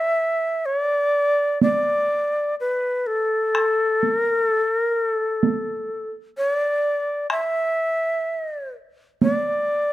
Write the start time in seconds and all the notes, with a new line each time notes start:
Already playing: E5
0.66 C#5
0.78 D5
1.61 D5, taiko high
2.60 B4
3.07 A4
3.55 taiko rim
4.03 taiko high
4.15 A#4
4.44 A4
4.75 A#4
5.05 A4
5.43 taiko high
6.38 C#5
6.51 D5
7.30 E5, taiko rim
9.22 D5, taiko high